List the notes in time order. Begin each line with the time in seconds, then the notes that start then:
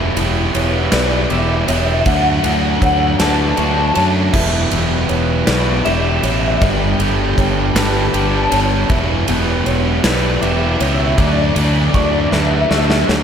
Already playing: E1 E2 B2 E3 B3 E4 G4 B4 E5 B5
0.16 E1 E2 B2 E3 B3 E4 G4, ride
0.54 E1 B3 C#5, ride
0.92 B1 E2 B2 E3 B3 E4 G4 B4 D5, snare, ride
1.01 D5
1.09 D5
1.16 D5
1.24 D5
1.30 E1 E2 B2 E3 B3 E4 G4 E5, ride
1.39 E5
1.48 E5
1.55 E5
1.63 E5
1.68 E1 E2 B2 E3 B3 E4 G4 C#5 E5, ride
1.77 E5
1.86 E5
1.94 E5
2.01 E5
2.05 D2 D3 F#3 A3 D4 F#4 E5 F#5 A5, kick, ride
2.15 F#5
2.22 F#5
2.30 F#5
2.37 F#5
2.44 D2 D3 E3 F#3 A3 D4 F#4 F#5, ride
2.53 F#5
2.61 F#5
2.69 F#5
2.76 F#5
2.81 D2 A3 C#5 F#5, kick, ride
2.93 F#5
3.00 F#5
3.08 F#5
3.17 D2 D3 F#3 A3 B4 F#5 A5, snare, ride
3.21 D4 F#4
3.27 A5
3.34 A5
3.42 A5
3.49 A5
3.57 D2 D3 F#3 A3 D4 F#4 A5, ride
3.65 A5
3.71 A5
3.80 A5
3.86 A5
3.94 F#2 D3 F#3 A3 D4 C#5 A5, ride
3.98 F#4
4.33 E1 E2 B2 E3 B3 E4 G4 B4 E5 B5, kick, crash
4.71 E1 E2 B2 E3 B3 E4 G4, ride
5.09 E1 B3 C#5, ride
5.46 B1 E2 B2 E3 B3 E4 G4 B4 D5, snare, ride
5.54 D5
5.61 D5
5.68 D5
5.76 D5
5.85 E1 E2 B2 E3 B3 E4 G4 E5, ride
5.93 E5
6.02 E5
6.08 E5
6.16 E5
6.23 A1 E2 B2 E3 B3 E4 G4 C#5 E5, ride
6.32 E5
6.40 E5
6.48 E5
6.55 E5
6.61 G1 G2 D3 G3 B3 D4 G4 D5 G5 A5, kick, ride
6.70 G5
6.77 G5
6.93 G5
6.99 G1 G2 D3 G3 A3 B3 D4 G4 G5, ride
7.09 G5
7.17 G5
7.24 G5
7.32 G5
7.38 G1 A3 C#5 G5, kick, ride
7.47 G5
7.56 G5
7.63 G5
7.71 G5
7.75 G1 G2 D3 G3 B3 D4 G4 B4 A5, snare, ride
7.83 A5
7.90 A5
7.98 A5
8.06 A5
8.13 G1 G2 D3 G3 B3 D4 G4 A5, ride
8.20 A5
8.27 A5
8.35 A5
8.42 A5
8.50 G1 G2 D3 G3 A3 B3 D4 G4 C#5 A5, ride
8.90 E1 E2 B2 E3 B3 E4 G4 E5 B5, kick, ride
9.27 E1 E2 B2 E3 B3 E4 G4, ride
9.66 E1 B3 C#5, ride
10.03 B1 E2 B2 E3 B3 E4 G4 B4 D5, snare, ride
10.12 D5
10.20 D5
10.28 D5
10.36 D5
10.41 E1 E2 B2 E3 B3 E4 G4 E5, ride
10.51 E5
10.58 E5
10.65 E5
10.74 E5
10.79 C#2 E2 B2 E3 B3 E4 G4 C#5 E5, ride
10.90 E5
10.99 E5
11.06 E5
11.17 D2 D3 F#3 A3 D4 F#4 D5 E5 A5, kick, ride
11.25 D5
11.33 D5
11.42 D5
11.50 D5
11.56 D2 D3 E3 F#3 A3 D4 F#4 D5, ride
11.65 D5
11.73 D5
11.81 D5
11.90 D5
11.94 D2 A3 D5 C#6, kick, ride
12.05 D5
12.12 D5
12.21 D5
12.28 D3 B4 D5 E5
12.32 D2 F#3 A3 D4 F#4, snare
12.40 E5
12.47 E5
12.54 E5
12.61 E5
12.69 D2 D3 F#3 A3 D4 F#4 E5, snare
12.78 E5
12.85 E5
12.90 E5, snare
13.00 E5
13.07 D2 D3 F#3 A3 D4 C#5 E5, snare
13.11 F#4